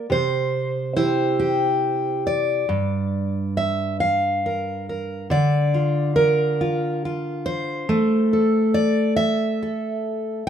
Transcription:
steel-string acoustic guitar
Already playing: D5
0.10 C3 C5
0.96 E4 G4 C5
1.39 G4
2.27 D5
2.69 G2
3.57 E5
4.00 F5
4.46 A#4
4.89 A#4
5.30 D3 D5
5.74 F4
6.16 A#4
6.61 F4
7.05 F4
7.46 C5
7.89 A3
8.33 A4
8.74 D5
9.16 E5
9.62 A4

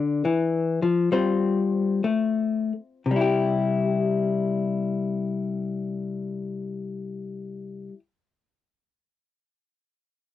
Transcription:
hollow-body jazz guitar
Already playing: D3 D4 D5
0.25 E3
0.82 F3
1.12 G3 C4 F4 C5
2.04 A3
3.06 C3
3.11 G3
3.16 E4
3.21 G4

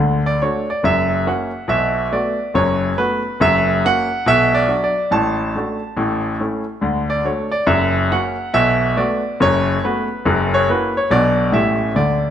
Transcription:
grand piano
Already playing: D2 D3
0.26 D5
0.42 A3 D4 F#4 C#5
0.70 D5
0.83 F#1 F#2 E5
1.27 A#3 C#4 F#4 F#5
1.68 B1 B2 E5
2.12 A3 B3 F#4 D5
2.54 F#1 F#2 C#5
2.97 A3 B3 F#4 B4
3.40 F#1 F#2 E5
3.85 A#3 C#4 F#4 F#5
4.26 B1 B2 E5
4.54 D5
4.68 F#3 D4 F#4
4.84 D5
5.11 A1 A2 A5
5.55 A3 D4 F#4
5.97 A1 A2
6.40 A3 C#4 E4
6.81 D2 D3
7.10 D5
7.24 A3 D4 F#4 C#5
7.52 D5
7.67 F#1 F#2 E5
8.11 A#3 C#4 F#4 F#5
8.54 B1 B2 E5
8.97 A3 B3 F#4 D5
9.40 F#1 F#2 C#5
9.84 A3 B3 F#4 B4
10.25 F#1 F#2
10.54 C#5
10.69 A#3 E4 F#4 B4
10.97 C#5
11.10 B1 B2 F#3 D4 F#4 D5
11.52 A1 A2 A3 C#4 G4 E5
11.95 D2 D3 D5

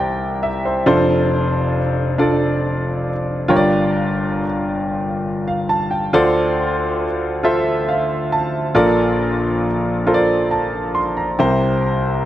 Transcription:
grand piano
Already playing: C2 C3 E4 G4 A#4 C5 D5
0.00 G5
0.43 E5
0.65 C5
0.86 F1 F2 D4 F4 A4 C5
2.18 D4 F4 A4 D5
3.48 G1 G2 F4 G4 A#4 C#5
3.56 D5
5.48 F5
5.69 A5
5.91 G5
6.13 D2 D3 F4 A4 C5 D5
7.43 F4 A4 C5 E5
7.88 F5
8.32 A5
8.75 A#1 A#2 F4 A4 A#4 D5
10.07 F4 A4 A#4 C5
10.14 D5
10.51 A5
10.95 C6
11.17 A#5
11.39 C2 C3 E4 G4 A#4 C5

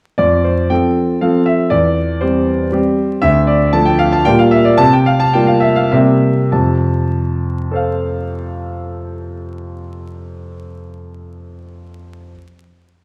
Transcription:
grand piano
0.18 F2 D5
0.44 C5
0.70 F3 C4 A4 G5
1.21 F3 C4 A4 F5
1.46 E5
1.70 E2 D5
2.21 G3 C4 G4 C5
2.72 G3 C4 G4
3.22 D2 E5
3.47 D5
3.73 F3 A3 A4 A5
3.85 G5
3.99 F5
4.12 A5
4.25 A#2 G3 A#3 G4 G5
4.39 F5
4.51 E5
4.65 D5
4.78 C3 A5
4.93 G5
5.06 F5
5.20 A5
5.33 G3 A#3 F4 G5
5.47 F5
5.60 E5
5.76 F5
5.92 C3 G3 A#3 G4 E5
6.52 F2 C3 A5
7.71 A4 C5
7.75 F5

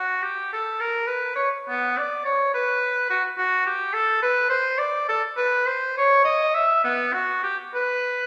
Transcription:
oboe
Already playing: F#4
0.23 G4
0.52 A4
0.80 A#4
1.07 B4
1.35 C#5
1.69 B3
1.98 D5
2.25 C#5
2.54 B4
3.10 F#4
3.38 F#4
3.66 G4
3.93 A4
4.22 B4
4.50 C5
4.78 D5
5.09 A4
5.37 B4
5.66 C5
5.97 C#5
6.24 D#5
6.54 E5
6.84 B3
7.13 F#4
7.43 G4
7.75 B4

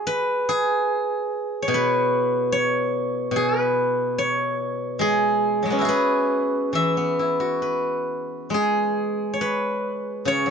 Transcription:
guzheng
Already playing: F#4 G#4
0.07 B4
0.49 G#4
1.62 C#5
1.68 B2
1.74 B4
2.52 C#5
3.31 B2
3.36 G#4
3.61 B4
4.18 C#5
4.99 G#3 G#4
5.63 F#3 G#3
5.70 B3 C#4
5.79 E4 F#4
5.85 G#4 B4
6.73 E3 E5
6.97 B3
7.19 E4
7.40 F#4
7.62 B4
8.50 G#3
8.54 G#4
9.33 C#5
9.41 B4
10.25 C#3 C#5
10.46 F#3

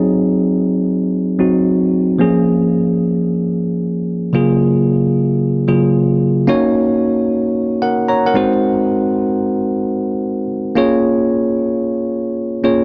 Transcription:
tine electric piano
Already playing: F#3 C4 D#4 G#4
1.39 F#3 C4 D#4 F#4
2.19 F3 A#3 C#4 G#4
4.33 C#3 F#3 A#3 F4 G#4
5.68 C#3 F#3 A#3 F4 G#4
6.47 A#3 C#4 D#4 F#4 C#5
7.82 A#4 F#5
8.09 C#5 A#5
8.26 A#4 F#5
8.34 G#3 C4 D#4 F#4 C5
10.75 A#3 C#4 F4 G#4 C#5
12.64 A#3 C#4 F4 G#4 C#5

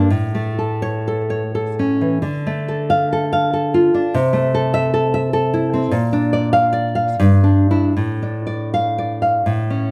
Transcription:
nylon-string guitar
0.10 A2
0.35 A3
0.59 A4
0.82 C#5
1.08 A4
1.30 C#5
1.55 A4
1.79 C#4
2.01 E3
2.22 D3
2.47 A3
2.68 A4
2.90 F5
3.13 A4
3.33 F5
3.53 A4
3.74 F4
3.94 D4
4.14 C3
4.33 A3
4.54 A4
4.74 E5
4.94 A4
5.14 E5
5.33 A4
5.54 E4
5.74 C4
5.91 A#2
6.13 D4
6.33 D5
6.53 F5
6.73 D5
6.95 F5
7.20 G2
7.44 D4
7.71 D4 E4
7.97 A2
8.22 D4
8.47 D5
8.74 F5
8.98 D5
9.22 F5
9.46 A2
9.70 C#4

